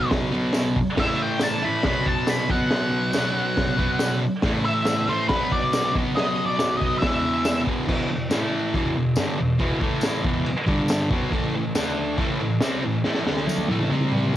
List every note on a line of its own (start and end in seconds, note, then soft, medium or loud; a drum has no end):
0.00 0.31 B2 medium
0.00 0.32 F#3 medium
0.00 0.30 B3 medium
0.11 kick loud
0.11 snare loud
0.11 open hi-hat medium
0.32 0.75 F#3 medium
0.32 0.74 B3 loud
0.37 0.77 B2 medium
0.53 snare loud
0.53 open hi-hat medium
0.53 tambourine medium
0.76 kick medium
0.97 1.61 A2 medium
0.97 1.62 E3 loud
0.97 1.21 E5 loud
0.97 kick loud
0.97 snare loud
0.97 crash loud
1.02 1.61 A3 loud
1.22 1.43 G5 loud
1.40 1.64 A5 medium
1.40 snare loud
1.40 open hi-hat medium
1.40 tambourine loud
1.62 1.84 E3 medium
1.62 1.83 A3 medium
1.62 1.85 B5 loud
1.67 1.83 A2 medium
1.83 2.47 B2 medium
1.83 2.49 F#3 loud
1.83 2.07 B5 loud
1.83 kick loud
1.83 snare loud
1.83 open hi-hat medium
1.88 2.50 B3 loud
2.06 2.28 A5 loud
2.06 kick medium
2.27 2.51 B5 loud
2.27 snare loud
2.27 open hi-hat medium
2.27 tambourine loud
2.49 3.12 B2 medium
2.49 3.14 F#3 medium
2.49 4.19 F#5 medium
2.49 kick loud
2.54 3.15 B3 loud
2.71 snare loud
2.71 open hi-hat medium
3.13 3.77 B2 medium
3.13 3.78 F#3 medium
3.13 snare loud
3.13 open hi-hat medium
3.13 tambourine loud
3.19 3.76 B3 loud
3.57 kick loud
3.57 snare loud
3.57 open hi-hat medium
3.77 4.21 F#3 medium
3.77 4.20 B3 medium
3.77 kick medium
3.83 4.22 B2 medium
3.99 snare loud
3.99 open hi-hat medium
3.99 tambourine loud
4.42 5.06 A2 medium
4.42 5.08 E3 medium
4.42 kick loud
4.42 snare loud
4.42 open hi-hat medium
4.48 5.06 A3 loud
4.65 5.09 E5 loud
4.85 snare loud
4.85 open hi-hat medium
4.85 tambourine medium
5.08 5.30 E3 medium
5.08 5.28 A3 loud
5.08 5.28 C5 loud
5.13 5.30 A2 medium
5.29 5.93 B2 loud
5.29 5.51 B4 medium
5.29 kick loud
5.29 snare loud
5.29 open hi-hat medium
5.33 5.95 F#3 loud
5.33 5.96 B3 loud
5.52 5.92 D5 loud
5.52 kick medium
5.73 snare loud
5.73 open hi-hat medium
5.73 tambourine loud
5.94 6.57 B2 medium
5.94 6.59 F#3 medium
5.94 kick loud
5.99 6.60 B3 loud
6.16 6.46 D#5 loud
6.16 snare loud
6.16 open hi-hat medium
6.46 6.77 D5 loud
6.58 7.01 B2 medium
6.58 7.02 F#3 medium
6.58 snare loud
6.58 open hi-hat medium
6.58 tambourine loud
6.64 7.03 B3 medium
6.77 6.98 D#5 loud
6.81 kick medium
6.98 7.65 E2 medium
6.98 7.61 E5 loud
6.98 snare loud
6.98 open hi-hat medium
7.03 7.66 B2 loud
7.03 kick loud
7.07 7.64 E3 loud
7.45 snare loud
7.45 open hi-hat medium
7.45 tambourine loud
7.65 7.87 B2 medium
7.65 7.86 E3 medium
7.65 kick medium
7.71 7.86 E2 medium
7.87 8.09 E2 medium
7.87 8.09 B2 medium
7.87 8.10 E3 loud
7.87 kick loud
7.87 crash loud
7.87 crash medium
8.10 8.27 E2 medium
8.10 8.27 B2 medium
8.30 8.73 A2 medium
8.30 8.74 E3 loud
8.30 8.75 A3 loud
8.30 snare loud
8.30 tambourine loud
8.30 crash medium
8.74 8.94 E2 loud
8.74 8.95 B2 medium
8.74 8.96 E3 loud
8.74 kick loud
8.74 crash medium
8.95 9.13 E2 medium
8.95 9.13 B2 medium
9.16 9.38 G2 loud
9.16 9.39 D3 loud
9.16 9.39 G3 loud
9.16 snare loud
9.16 tambourine loud
9.16 crash medium
9.39 9.56 E2 medium
9.39 9.56 B2 medium
9.59 9.81 E2 medium
9.59 9.80 B2 loud
9.59 9.81 E3 loud
9.59 kick loud
9.59 crash medium
9.81 10.24 A2 loud
9.81 10.24 E3 medium
9.81 10.25 A3 loud
9.81 kick loud
10.01 snare loud
10.01 tambourine loud
10.01 crash medium
10.24 10.44 E2 loud
10.24 10.46 B2 loud
10.24 10.47 E3 loud
10.24 kick loud
10.46 muted distorted electric guitar stroke medium
10.46 crash medium
10.66 11.10 G2 medium
10.66 11.10 D3 loud
10.66 11.10 G3 medium
10.66 kick loud
10.88 snare loud
10.88 tambourine loud
10.88 crash medium
11.11 11.31 B2 medium
11.11 11.32 F#3 medium
11.11 11.33 B3 medium
11.11 kick loud
11.31 11.53 A2 loud
11.31 11.54 E3 loud
11.31 11.54 A3 loud
11.31 kick loud
11.31 crash medium
11.55 11.72 A2 medium
11.55 11.72 E3 medium
11.75 12.17 D3 medium
11.75 12.18 A3 loud
11.75 12.19 D4 loud
11.75 snare loud
11.75 tambourine loud
11.75 crash medium
12.18 12.39 A2 loud
12.18 12.39 E3 loud
12.18 12.40 A3 loud
12.18 kick loud
12.18 crash medium
12.41 12.58 A2 medium
12.41 12.58 E3 medium
12.60 12.82 C3 medium
12.60 12.83 G3 loud
12.60 12.83 C4 loud
12.60 snare loud
12.60 tambourine loud
12.60 crash medium
12.84 13.01 A2 medium
12.84 13.01 E3 medium
13.04 13.25 A2 medium
13.04 13.26 E3 loud
13.04 13.26 A3 loud
13.04 snare medium
13.15 snare medium
13.26 13.68 D3 loud
13.26 13.69 A3 loud
13.26 13.69 D4 loud
13.26 snare medium
13.37 snare medium
13.47 high tom medium
13.47 tambourine loud
13.58 high tom medium
13.68 13.90 A2 loud
13.68 13.90 E3 loud
13.68 13.91 A3 loud
13.68 high tom loud
13.79 mid tom medium
13.90 14.37 C3 loud
13.90 14.37 G3 medium
13.90 14.37 C4 loud
13.90 mid tom medium
14.00 mid tom medium
14.12 mid tom loud
14.23 mid tom medium
14.34 mid tom loud